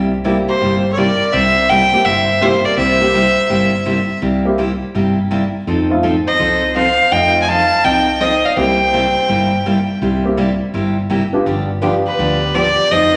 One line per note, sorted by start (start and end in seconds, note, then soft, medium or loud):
0.00 0.46 C2 medium
0.00 0.11 C3 medium
0.00 0.11 G3 medium
0.00 0.11 A#3 medium
0.00 0.11 E4 medium
0.00 0.11 G4 medium
0.24 0.36 C3 medium
0.24 0.36 G3 medium
0.24 0.80 A#3 medium
0.24 0.37 A#3 medium
0.24 0.80 C4 medium
0.24 0.37 E4 medium
0.24 0.80 E4 medium
0.24 0.37 G4 medium
0.24 0.80 G4 medium
0.48 0.89 G4 medium
0.48 0.89 C5 medium
0.61 1.19 G1 medium
0.61 0.83 C3 medium
0.61 0.83 G3 medium
0.61 0.84 A#3 medium
0.61 0.84 E4 medium
0.61 0.84 G4 medium
0.92 0.98 A4 medium
0.92 0.99 C#5 medium
0.97 1.09 C3 medium
0.97 1.09 G3 medium
0.97 1.09 A#3 medium
0.97 1.09 E4 medium
0.97 1.09 G4 medium
0.97 1.35 A#4 medium
0.97 1.34 D5 medium
1.33 1.91 C2 medium
1.33 1.55 C3 medium
1.33 1.55 G3 medium
1.33 1.56 A#3 medium
1.33 1.56 E4 medium
1.33 1.56 G4 medium
1.33 1.69 C5 medium
1.33 1.71 E5 loud
1.69 1.81 C3 medium
1.69 1.81 G3 medium
1.69 1.82 A#3 medium
1.69 1.82 E4 medium
1.69 1.82 G4 medium
1.69 2.06 C5 medium
1.69 2.06 G5 loud
1.93 2.04 A#3 medium
1.93 2.04 C4 medium
1.93 2.04 E4 medium
1.93 2.04 G4 medium
2.04 2.63 G1 medium
2.04 2.28 C3 medium
2.04 2.28 G3 medium
2.04 2.28 A#3 medium
2.04 2.28 E4 medium
2.04 2.28 G4 medium
2.04 2.43 C5 medium
2.04 2.43 E5 medium
2.41 2.53 C3 medium
2.41 2.54 G3 medium
2.41 2.96 A#3 medium
2.41 2.54 A#3 medium
2.41 2.97 C4 medium
2.41 2.97 E4 medium
2.41 2.54 E4 medium
2.41 2.68 G4 medium
2.41 2.54 G4 medium
2.41 2.97 G4 medium
2.41 2.67 C5 medium
2.65 2.78 A#4 medium
2.65 2.77 D5 medium
2.77 3.35 C2 medium
2.77 3.00 C3 medium
2.77 3.00 G3 medium
2.77 3.00 A#3 medium
2.77 3.00 E4 medium
2.77 3.00 G4 medium
2.77 4.19 C5 medium
2.77 4.18 E5 loud
3.01 3.12 A#3 medium
3.01 3.12 C4 medium
3.01 3.13 E4 medium
3.01 3.13 G4 medium
3.14 3.26 C3 medium
3.14 3.26 G3 medium
3.14 3.26 A#3 medium
3.14 3.26 E4 medium
3.14 3.26 G4 medium
3.50 4.08 G1 medium
3.50 3.72 C3 medium
3.50 3.72 G3 medium
3.50 3.72 A#3 medium
3.50 3.72 E4 medium
3.50 3.72 G4 medium
3.86 3.98 C3 medium
3.86 3.98 G3 medium
3.86 3.98 A#3 medium
3.86 3.98 E4 medium
3.86 3.98 G4 medium
4.22 4.80 C2 medium
4.22 4.44 C3 medium
4.22 4.44 G3 medium
4.22 4.44 A#3 medium
4.22 4.45 E4 medium
4.22 4.45 G4 medium
4.45 4.57 A#3 medium
4.45 4.57 C4 medium
4.45 4.57 E4 medium
4.45 4.57 G4 medium
4.58 4.70 C3 medium
4.58 4.70 G3 medium
4.58 4.70 A#3 medium
4.58 4.71 E4 medium
4.58 4.71 G4 medium
4.95 5.53 G1 medium
4.95 5.17 C3 medium
4.95 5.17 G3 medium
4.95 5.17 A#3 medium
4.95 5.17 E4 medium
4.95 5.17 G4 medium
5.31 5.42 C3 medium
5.31 5.43 G3 medium
5.31 5.43 A#3 medium
5.31 5.43 E4 medium
5.31 5.43 G4 medium
5.67 6.25 F2 medium
5.67 5.89 F3 medium
5.67 5.90 C4 medium
5.67 5.90 D#4 medium
5.67 5.90 A4 medium
5.90 6.01 A3 medium
5.90 6.02 C4 medium
5.90 6.02 D#4 medium
5.90 6.02 F4 medium
6.03 6.15 F3 medium
6.03 6.15 C4 medium
6.03 6.15 D#4 medium
6.03 6.15 A4 medium
6.27 6.72 C5 medium
6.27 6.72 D#5 medium
6.39 6.97 C2 medium
6.39 6.62 F3 medium
6.39 6.62 C4 medium
6.39 6.62 D#4 medium
6.39 6.62 A4 medium
6.76 6.87 F3 medium
6.76 6.87 C4 medium
6.76 6.87 D#4 medium
6.76 6.88 A4 medium
6.76 7.14 C5 medium
6.76 7.13 F5 loud
7.11 7.70 F2 medium
7.11 7.34 F3 medium
7.11 8.12 A3 medium
7.11 8.13 C4 medium
7.11 7.34 C4 medium
7.11 8.13 D#4 soft
7.11 7.34 D#4 medium
7.11 8.13 F4 medium
7.11 7.35 A4 medium
7.11 7.43 D#5 medium
7.11 7.41 G5 loud
7.42 7.50 D#5 medium
7.42 7.50 G#5 medium
7.48 7.60 F3 medium
7.48 7.60 C4 medium
7.48 7.60 D#4 medium
7.48 7.60 A4 medium
7.48 7.87 F5 medium
7.48 7.86 A5 loud
7.84 8.42 C2 medium
7.84 8.06 F3 medium
7.84 8.06 C4 medium
7.84 8.07 D#4 medium
7.84 8.07 A4 medium
7.84 8.23 D#5 medium
7.84 8.22 G5 loud
8.20 8.32 F3 medium
8.20 8.32 C4 medium
8.20 8.32 D#4 medium
8.20 8.32 A4 medium
8.20 8.46 C5 medium
8.20 8.47 D#5 loud
8.45 8.56 D5 medium
8.45 8.57 F5 medium
8.56 9.14 C2 loud
8.56 8.79 C3 medium
8.56 8.79 G3 medium
8.56 9.57 A#3 medium
8.56 8.79 A#3 medium
8.56 9.57 C4 soft
8.56 9.58 E4 medium
8.56 8.79 E4 medium
8.56 9.58 G4 medium
8.56 8.79 G4 medium
8.56 9.97 C5 medium
8.56 9.98 G5 loud
8.93 9.05 C3 medium
8.93 9.05 G3 medium
8.93 9.05 A#3 medium
8.93 9.05 E4 medium
8.93 9.05 G4 medium
9.29 9.87 G1 medium
9.29 9.51 C3 medium
9.29 9.51 G3 medium
9.29 9.51 A#3 medium
9.29 9.51 E4 medium
9.29 9.52 G4 medium
9.66 9.77 C3 medium
9.66 9.77 G3 medium
9.66 9.77 A#3 medium
9.66 9.77 E4 medium
9.66 9.78 G4 medium
10.02 10.59 C2 medium
10.02 10.24 C3 medium
10.02 10.24 G3 medium
10.02 10.24 A#3 medium
10.02 10.24 E4 medium
10.02 10.24 G4 medium
10.24 10.36 A#3 medium
10.24 10.36 C4 medium
10.24 10.36 E4 medium
10.24 10.36 G4 medium
10.37 10.49 C3 medium
10.37 10.49 G3 medium
10.37 10.49 A#3 medium
10.37 10.50 E4 medium
10.37 10.50 G4 medium
10.74 11.31 G1 medium
10.74 10.96 C3 medium
10.74 10.96 G3 medium
10.74 10.96 A#3 medium
10.74 10.96 E4 medium
10.74 10.96 G4 medium
11.10 11.22 C3 medium
11.10 11.22 G3 medium
11.10 11.22 A#3 medium
11.10 11.22 E4 medium
11.10 11.22 G4 medium
11.33 11.44 B3 medium
11.33 11.44 D4 medium
11.33 11.45 F4 medium
11.33 11.45 G4 medium
11.46 12.04 G1 medium
11.46 11.68 D3 medium
11.46 11.69 F3 medium
11.46 11.69 B3 medium
11.46 11.69 D4 medium
11.46 11.69 G4 medium
11.82 11.94 D3 medium
11.82 11.94 F3 medium
11.82 12.37 B3 medium
11.82 11.94 B3 medium
11.82 12.37 D4 medium
11.82 11.94 D4 medium
11.82 12.37 F4 medium
11.82 11.94 G4 medium
11.82 12.38 G4 medium
12.06 12.55 G4 medium
12.06 12.56 B4 medium
12.19 12.77 D2 medium
12.19 12.41 D3 medium
12.19 12.41 F3 medium
12.19 12.41 B3 medium
12.19 12.41 D4 medium
12.19 12.41 G4 medium
12.54 12.67 D3 medium
12.54 12.67 F3 medium
12.54 12.67 B3 medium
12.54 12.67 D4 medium
12.54 12.93 G4 medium
12.54 12.67 G4 medium
12.54 12.93 D5 loud
12.91 13.16 F1 medium
12.91 13.14 F3 medium
12.91 13.14 C4 medium
12.91 13.14 D#4 medium
12.91 13.14 A4 medium
12.91 13.16 C5 medium
12.91 13.16 D#5 loud